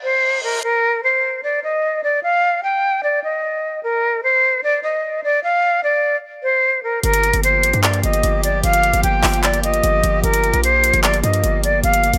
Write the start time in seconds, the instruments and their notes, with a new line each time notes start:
Already playing: reverse cymbal
0.03 flute C5
0.43 flute A#4
0.63 flute A#4
1.04 flute C5
1.43 flute D5
1.64 flute D#5
2.04 flute D5
2.23 flute F5
2.64 flute G5
3.03 flute D5
3.24 flute D#5
3.83 flute A#4
4.23 flute C5
4.63 flute D5
4.83 flute D#5
5.24 flute D5
5.44 flute F5
5.84 flute D5
6.43 flute C5
6.83 flute A#4
7.03 808-style bass G1, string section F3 A#3 G4, flute A#4, closed hi-hat
7.14 closed hi-hat
7.24 closed hi-hat
7.33 808-style bass G1, closed hi-hat
7.43 flute C5, closed hi-hat
7.63 808-style bass G#1, closed hi-hat
7.73 808-style bass G2, closed hi-hat
7.83 flute D5, clap, closed hi-hat
7.94 closed hi-hat
8.03 808-style bass G1, flute D#5, closed hi-hat
8.13 closed hi-hat
8.23 808-style bass G1, closed hi-hat
8.44 flute D5, closed hi-hat
8.63 808-style bass G1, flute F5, closed hi-hat
8.73 closed hi-hat
8.83 closed hi-hat
8.93 808-style bass G1, closed hi-hat
9.03 808-style bass G1, flute G5, closed hi-hat
9.23 808-style bass G1, clap, open hi-hat
9.34 closed hi-hat
9.43 flute D5, clap, closed hi-hat
9.54 closed hi-hat
9.64 flute D#5, closed hi-hat
9.74 closed hi-hat
9.83 808-style bass G1, closed hi-hat
10.04 808-style bass G1, closed hi-hat
10.23 808-style bass G1, string section A#3, flute A#4, closed hi-hat
10.34 closed hi-hat
10.44 closed hi-hat
10.54 808-style bass A#1, closed hi-hat
10.64 flute C5, closed hi-hat
10.84 closed hi-hat
10.93 808-style bass G1, closed hi-hat
11.03 flute D5, clap, closed hi-hat
11.14 closed hi-hat
11.23 808-style bass G2, flute D#5, closed hi-hat
11.34 closed hi-hat
11.43 808-style bass G1, closed hi-hat
11.64 flute D5, closed hi-hat
11.83 808-style bass G1, flute F5, closed hi-hat
11.94 closed hi-hat
12.04 closed hi-hat
12.13 808-style bass G1, closed hi-hat